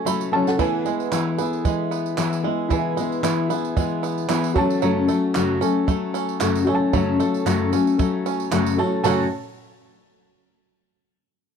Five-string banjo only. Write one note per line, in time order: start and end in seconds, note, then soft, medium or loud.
0.00 0.59 F#3 medium
0.00 0.32 C#4 medium
0.00 0.65 F#4 medium
0.06 0.65 A3 medium
0.33 0.65 C#4 medium
0.59 2.69 E3 medium
0.86 1.64 G#3 soft
1.12 2.17 E4 medium
1.38 1.90 B3 medium
1.65 2.43 G#3 medium
1.91 3.49 B3 medium
2.18 3.22 E4 medium
2.44 2.96 G#3 medium
2.70 4.55 E3 medium
2.97 3.75 G#3 medium
3.24 4.28 E4 medium
3.50 4.02 B3 medium
3.77 4.62 G#3 medium
4.03 4.62 B3 medium
4.29 4.62 E4 medium
4.56 4.82 F#3 medium
4.82 6.92 F#3 medium
5.09 5.87 A3 medium
5.35 6.40 F#4 medium
5.61 6.14 C#4 medium
5.88 6.67 A3 medium
6.14 7.72 C#4 medium
6.41 7.46 F#4 medium
6.67 7.19 A3 medium
6.93 9.03 F#3 medium
7.20 7.99 A3 medium
7.47 8.52 F#4 medium
7.73 8.26 C#4 medium
7.99 8.78 A3 medium
8.26 9.06 C#4 medium
8.52 9.06 F#4 medium
8.79 9.05 A3 medium
9.04 9.26 F#3 medium
9.04 9.26 A3 medium
9.04 9.27 C#4 medium
9.04 9.27 F#4 medium